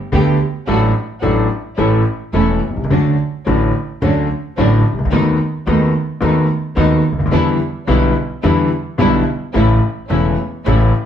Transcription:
0.12 0.36 D2 medium
0.12 0.36 D3 medium
0.12 0.36 A3 medium
0.12 0.36 B3 medium
0.12 0.36 G4 medium
0.67 0.91 A1 medium
0.67 0.91 A2 medium
0.67 0.91 F#3 medium
0.67 0.91 A3 medium
0.67 0.91 D4 medium
0.67 0.91 F#4 medium
0.67 0.91 A4 medium
1.21 1.46 A1 medium
1.21 1.46 A2 medium
1.21 1.46 F#3 medium
1.21 1.45 A3 medium
1.21 1.46 A3 medium
1.21 1.45 D4 medium
1.21 1.46 D4 medium
1.21 1.45 F#4 medium
1.21 1.46 A4 medium
1.77 2.01 A1 medium
1.77 2.02 A1 medium
1.77 2.02 A2 medium
1.77 2.01 E3 medium
1.77 2.01 A3 medium
1.77 2.01 C#4 medium
1.77 2.02 C#4 medium
1.77 2.01 E4 medium
1.77 2.02 A4 medium
2.33 2.58 E1 medium
2.33 2.58 E2 medium
2.33 2.58 E3 medium
2.33 2.58 A3 medium
2.33 2.58 C#4 medium
2.33 2.58 E4 medium
2.33 2.58 A4 medium
2.69 2.76 B1 soft
2.69 2.77 B1 soft
2.76 2.83 C2 medium
2.76 2.84 C2 medium
2.84 2.90 C#2 medium
2.84 2.91 C#2 medium
2.90 3.14 D2 medium
2.90 3.14 D3 medium
2.90 3.14 F#3 medium
2.90 3.14 A3 medium
2.90 3.14 C#4 medium
2.90 3.15 C#4 medium
2.90 3.14 D4 medium
2.90 3.15 F#4 medium
3.46 3.71 A1 medium
3.46 3.70 A2 medium
3.46 3.70 D3 medium
3.46 3.70 F#3 medium
3.46 3.70 A3 medium
3.46 3.70 C#4 medium
3.46 3.71 C#4 medium
3.46 3.70 D4 medium
3.46 3.71 F#4 medium
4.02 4.26 D2 loud
4.02 4.26 D2 medium
4.02 4.26 D3 medium
4.02 4.26 F#3 medium
4.02 4.26 A3 medium
4.02 4.26 C#4 medium
4.02 4.26 D4 medium
4.02 4.26 F#4 medium
4.57 4.81 A1 medium
4.57 4.81 A2 medium
4.57 4.81 D3 medium
4.57 4.81 F#3 medium
4.57 4.81 A3 medium
4.57 4.81 C#4 medium
4.57 4.81 D4 medium
4.57 4.81 F#4 medium
4.92 4.98 C2 medium
4.92 5.00 C2 soft
4.99 5.05 C#2 medium
4.99 5.06 C#2 medium
5.05 5.13 D2 medium
5.05 5.11 D2 medium
5.11 5.35 D#2 medium
5.11 5.36 D#2 medium
5.11 5.36 D#3 medium
5.11 5.35 A3 medium
5.11 5.36 A3 medium
5.11 5.36 B3 medium
5.11 5.35 D#4 medium
5.11 5.36 F#4 medium
5.67 5.91 D#2 loud
5.67 5.91 D#2 medium
5.67 5.91 D#3 medium
5.67 5.91 A3 medium
5.67 5.91 B3 medium
5.67 5.91 D#4 medium
5.67 5.91 F#4 medium
6.21 6.45 D#2 medium
6.21 6.45 D#2 loud
6.21 6.45 D#3 medium
6.21 6.45 A3 medium
6.21 6.46 A3 medium
6.21 6.45 B3 medium
6.21 6.46 B3 medium
6.21 6.46 D#4 medium
6.21 6.45 F#4 medium
6.76 7.01 D#2 medium
6.76 7.01 D#3 medium
6.76 7.01 A3 medium
6.76 7.01 B3 medium
6.76 7.01 D#4 medium
6.76 7.01 F#4 medium
7.12 7.19 C#2 medium
7.12 7.20 C#2 medium
7.19 7.26 D2 medium
7.26 7.33 D#2 medium
7.32 7.56 E2 medium
7.32 7.57 E2 medium
7.32 7.56 D3 medium
7.32 7.56 E3 medium
7.32 7.56 G3 medium
7.32 7.56 B3 medium
7.32 7.56 D4 medium
7.32 7.56 E4 medium
7.87 8.11 B1 medium
7.87 8.11 B2 medium
7.87 8.11 D3 medium
7.87 8.11 G3 medium
7.87 8.11 B3 medium
7.87 8.11 D4 medium
7.87 8.11 E4 medium
7.87 8.12 E4 medium
8.43 8.67 E2 medium
8.43 8.67 E2 loud
8.43 8.67 D3 medium
8.43 8.67 E3 medium
8.43 8.67 G3 medium
8.43 8.67 B3 medium
8.43 8.67 D4 medium
8.43 8.67 E4 medium
8.98 9.22 B1 medium
8.98 9.22 B2 medium
8.98 9.22 D3 medium
8.98 9.22 G3 medium
8.98 9.22 B3 medium
8.98 9.22 D4 medium
8.98 9.22 E4 medium
9.53 9.78 A1 medium
9.53 9.77 A2 medium
9.53 9.77 C#3 medium
9.53 9.78 E3 medium
9.53 9.77 A3 medium
9.53 9.78 A3 medium
9.53 9.77 C#4 medium
9.53 9.77 E4 medium
9.53 9.78 E4 medium
10.09 10.34 E1 medium
10.09 10.34 E2 medium
10.09 10.33 C#3 medium
10.09 10.34 E3 medium
10.09 10.33 A3 medium
10.09 10.34 A3 medium
10.09 10.33 C#4 medium
10.09 10.33 E4 medium
10.09 10.34 E4 medium
10.64 10.90 A1 loud
10.64 10.90 A1 medium
10.64 10.90 A2 medium
10.64 10.90 C#3 medium
10.64 10.90 E3 medium
10.64 10.89 A3 medium
10.64 10.90 A3 medium
10.64 10.89 C#4 medium
10.64 10.89 E4 medium
10.64 10.90 E4 medium

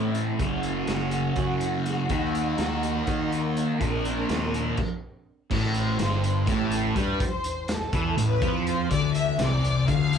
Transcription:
0.00 0.31 A2 medium
0.00 0.38 A2 medium
0.00 0.39 E3 medium
0.00 0.39 A3 loud
0.00 2.07 A3 medium
0.00 0.39 C4 medium
0.00 0.38 E4 medium
0.15 closed hi-hat medium
0.38 0.82 F#1 medium
0.38 2.08 F#2 medium
0.38 2.09 C#3 medium
0.38 2.09 F#3 medium
0.38 2.07 C#4 medium
0.38 3.76 F#4 medium
0.38 kick loud
0.38 closed hi-hat medium
0.63 closed hi-hat medium
0.87 1.30 F#1 medium
0.87 snare loud
0.87 closed hi-hat medium
1.11 closed hi-hat medium
1.36 2.01 F#2 medium
1.36 kick loud
1.36 closed hi-hat medium
1.61 closed hi-hat medium
1.86 snare soft
1.86 closed hi-hat medium
2.09 2.53 D#2 medium
2.09 3.79 D#3 medium
2.09 3.79 A#3 loud
2.09 3.80 A#3 medium
2.09 3.79 D#4 medium
2.09 kick loud
2.09 closed hi-hat medium
2.35 closed hi-hat medium
2.58 3.01 D#2 medium
2.58 snare loud
2.58 closed hi-hat medium
2.83 closed hi-hat medium
3.07 3.71 D#3 medium
3.07 kick loud
3.07 closed hi-hat medium
3.32 closed hi-hat medium
3.57 closed hi-hat medium
3.79 4.23 A#1 medium
3.79 4.76 A#2 medium
3.79 4.76 F3 medium
3.79 4.76 A#3 loud
3.79 4.78 C4 medium
3.79 4.78 D4 medium
3.79 4.78 A#4 medium
3.79 kick loud
3.79 closed hi-hat medium
4.05 closed hi-hat medium
4.29 4.72 D#2 medium
4.29 snare loud
4.29 closed hi-hat medium
4.54 closed hi-hat medium
4.77 kick medium
4.77 crash medium
5.51 5.96 A1 medium
5.51 10.18 A1 medium
5.51 10.18 E2 medium
5.51 5.98 A2 loud
5.51 kick medium
5.51 crash loud
5.74 6.45 C5 medium
5.74 closed hi-hat medium
5.99 6.44 G1 medium
5.99 6.47 G2 loud
5.99 snare loud
5.99 closed hi-hat medium
6.24 closed hi-hat medium
6.47 6.93 A1 medium
6.47 6.95 A2 loud
6.47 kick medium
6.47 closed hi-hat medium
6.51 6.73 G4 medium
6.71 6.97 A4 medium
6.71 closed hi-hat medium
6.95 7.19 G2 loud
6.95 7.19 G3 loud
6.95 7.21 B4 medium
6.95 kick medium
6.95 closed hi-hat medium
7.20 kick loud
7.20 closed hi-hat medium
7.25 7.71 C5 medium
7.44 closed hi-hat medium
7.68 8.19 A4 medium
7.68 snare loud
7.68 closed hi-hat loud
7.93 8.16 E2 medium
7.93 8.17 E3 loud
7.93 kick loud
7.93 closed hi-hat medium
8.17 8.40 A1 medium
8.17 8.37 A2 medium
8.17 closed hi-hat loud
8.23 8.69 B4 loud
8.42 8.87 F2 medium
8.42 8.90 F3 loud
8.42 kick loud
8.42 closed hi-hat medium
8.67 8.89 C5 medium
8.67 closed hi-hat medium
8.91 9.36 D2 medium
8.91 9.38 D3 loud
8.91 9.14 D5 loud
8.91 kick loud
8.91 closed hi-hat loud
9.15 9.37 E5 loud
9.15 closed hi-hat medium
9.39 9.84 C2 loud
9.39 9.87 C3 medium
9.39 9.86 D5 loud
9.39 snare loud
9.39 closed hi-hat medium
9.64 closed hi-hat medium
9.87 10.18 D2 medium
9.87 10.18 D3 loud
9.87 10.18 F5 loud
9.87 kick loud
9.87 closed hi-hat medium
10.13 closed hi-hat medium

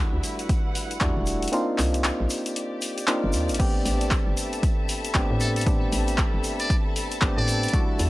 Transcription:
0.00 0.98 G3 loud
0.00 0.98 A3 medium
0.00 0.99 D4 medium
0.00 0.99 E4 medium
0.00 1.53 E4 medium
0.00 0.99 F#4 loud
0.00 0.30 A4 medium
0.00 1.53 B4 medium
0.00 0.30 E5 medium
0.00 0.30 B5 medium
0.13 0.20 D2 medium
0.23 open hi-hat medium
0.23 shaker medium
0.39 1.53 F#5 medium
0.39 closed hi-hat medium
0.39 shaker soft
0.49 kick loud
0.49 closed hi-hat medium
0.49 shaker soft
0.75 open hi-hat medium
0.75 shaker medium
0.91 closed hi-hat medium
0.91 shaker soft
1.01 1.11 E2 medium
1.01 1.50 G3 loud
1.01 1.50 A3 medium
1.01 1.50 D4 medium
1.01 1.50 E4 medium
1.01 1.51 F#4 loud
1.01 kick loud
1.01 clap loud
1.01 closed hi-hat medium
1.01 shaker soft
1.17 1.47 E1 loud
1.26 open hi-hat medium
1.26 shaker medium
1.42 closed hi-hat soft
1.42 shaker soft
1.48 closed hi-hat medium
1.52 3.05 A#3 loud
1.52 3.05 C4 medium
1.52 3.06 D4 medium
1.52 3.06 D#4 medium
1.52 3.06 F4 loud
1.52 closed hi-hat medium
1.52 shaker soft
1.71 5.14 G4 medium
1.78 2.11 C2 medium
1.78 clap medium
1.78 open hi-hat medium
1.78 shaker medium
1.94 closed hi-hat medium
1.94 shaker soft
2.04 clap loud
2.04 closed hi-hat medium
2.04 shaker soft
2.20 2.27 A#1 medium
2.30 open hi-hat medium
2.30 shaker medium
2.46 4.87 D5 medium
2.46 closed hi-hat medium
2.46 shaker soft
2.56 closed hi-hat medium
2.56 shaker soft
2.82 open hi-hat medium
2.82 shaker medium
2.98 closed hi-hat medium
2.98 shaker soft
3.08 3.57 A#3 loud
3.08 3.57 C4 medium
3.08 3.57 D4 medium
3.08 3.57 D#4 medium
3.08 3.58 F4 loud
3.08 clap loud
3.08 closed hi-hat medium
3.08 shaker soft
3.24 3.35 G1 loud
3.33 3.51 D#2 loud
3.33 open hi-hat medium
3.33 shaker medium
3.49 3.80 A1 medium
3.49 closed hi-hat soft
3.49 shaker medium
3.54 closed hi-hat medium
3.59 5.12 A3 loud
3.59 5.12 B3 medium
3.59 5.12 C4 medium
3.59 5.13 D4 medium
3.59 5.13 G4 loud
3.59 8.10 A4 medium
3.59 8.10 A5 medium
3.59 kick loud
3.59 closed hi-hat medium
3.59 crash medium
3.59 shaker soft
3.76 8.10 E5 medium
3.85 4.18 A1 medium
3.85 open hi-hat loud
3.85 shaker medium
4.01 closed hi-hat medium
4.01 shaker soft
4.11 kick loud
4.11 clap loud
4.11 closed hi-hat medium
4.11 shaker soft
4.26 4.34 G1 medium
4.26 8.10 B5 medium
4.37 open hi-hat medium
4.37 shaker medium
4.53 closed hi-hat medium
4.53 shaker soft
4.63 kick loud
4.63 closed hi-hat medium
4.63 shaker soft
4.89 open hi-hat loud
4.89 shaker medium
5.04 closed hi-hat medium
5.04 shaker soft
5.14 5.25 A1 medium
5.14 5.64 A3 loud
5.14 5.64 B3 medium
5.14 5.64 C4 medium
5.14 5.64 D4 medium
5.14 5.64 G4 loud
5.14 kick loud
5.14 clap loud
5.14 closed hi-hat medium
5.14 shaker soft
5.30 5.87 A2 loud
5.40 5.51 A4 medium
5.40 open hi-hat medium
5.40 shaker medium
5.56 5.63 A4 medium
5.56 closed hi-hat soft
5.56 shaker soft
5.61 closed hi-hat medium
5.66 7.19 A3 loud
5.66 7.19 B3 medium
5.66 7.19 C4 medium
5.66 7.20 D4 medium
5.66 7.20 G4 loud
5.66 kick loud
5.66 closed hi-hat medium
5.66 shaker soft
5.92 6.25 A1 loud
5.92 open hi-hat loud
5.92 shaker loud
6.08 closed hi-hat medium
6.08 shaker medium
6.18 kick loud
6.18 clap loud
6.18 closed hi-hat medium
6.18 shaker soft
6.34 6.41 G1 medium
6.44 open hi-hat medium
6.44 shaker loud
6.59 6.75 D5 medium
6.59 closed hi-hat medium
6.59 shaker medium
6.70 kick loud
6.70 closed hi-hat medium
6.70 shaker soft
6.96 open hi-hat loud
6.96 shaker medium
7.11 closed hi-hat medium
7.11 shaker medium
7.21 7.32 A1 medium
7.21 7.71 A3 loud
7.21 7.71 B3 medium
7.21 7.71 C4 medium
7.21 7.71 D4 medium
7.21 7.71 G4 loud
7.21 kick loud
7.21 clap loud
7.21 closed hi-hat medium
7.21 shaker soft
7.37 7.68 A2 loud
7.37 7.80 D5 loud
7.48 open hi-hat medium
7.48 shaker loud
7.63 closed hi-hat soft
7.63 shaker soft
7.68 closed hi-hat medium
7.73 8.10 G3 medium
7.73 8.10 A3 medium
7.73 8.10 D4 medium
7.73 8.10 E4 medium
7.73 8.10 F#4 loud
7.73 kick loud
7.73 closed hi-hat medium
7.73 shaker soft
7.99 8.10 E2 loud
7.99 open hi-hat loud
7.99 shaker medium
8.05 8.10 F#5 medium

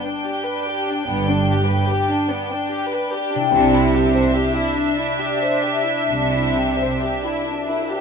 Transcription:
0.00 2.32 G2 medium
0.00 2.36 D4 soft
0.00 3.49 D4 medium
0.00 2.41 G4 soft
0.00 2.45 B4 soft
0.00 3.49 G5 medium
0.06 0.26 D4 medium
0.26 0.46 G4 medium
0.45 0.67 B4 medium
0.67 0.88 G4 medium
0.87 1.08 D4 medium
1.07 1.77 G1 medium
1.07 1.77 G2 medium
1.07 1.27 B3 medium
1.29 1.50 D4 medium
1.50 1.70 G4 medium
1.68 1.90 B4 medium
1.88 2.10 G4 medium
2.10 2.30 D4 medium
2.29 2.50 B3 medium
2.52 2.72 D4 medium
2.71 2.92 G4 medium
2.92 3.12 B4 medium
3.13 3.33 G4 medium
3.33 7.25 C3 medium
3.33 3.52 D4 medium
3.40 7.30 E4 medium
3.44 7.34 G4 medium
3.49 8.01 D4 medium
3.49 7.39 D5 medium
3.49 8.01 E5 medium
3.53 4.21 C2 medium
3.53 4.21 C3 loud
3.53 3.72 D4 medium
3.74 3.94 E4 medium
3.94 4.14 G4 medium
4.13 4.34 C5 medium
4.34 4.55 G4 medium
4.55 4.76 E4 medium
4.75 4.97 D4 medium
4.97 5.18 E4 medium
5.19 5.40 G4 medium
5.41 5.63 C5 medium
5.63 5.85 G4 medium
5.86 6.09 E4 medium
6.08 6.86 C2 medium
6.08 6.87 C3 medium
6.08 6.30 D4 medium
6.32 6.56 E4 medium
6.56 6.79 G4 medium
6.80 7.02 C5 medium
7.02 7.25 G4 medium
7.24 7.47 E4 medium
7.47 7.70 D4 medium
7.69 7.93 E4 soft
7.90 8.01 G4 medium

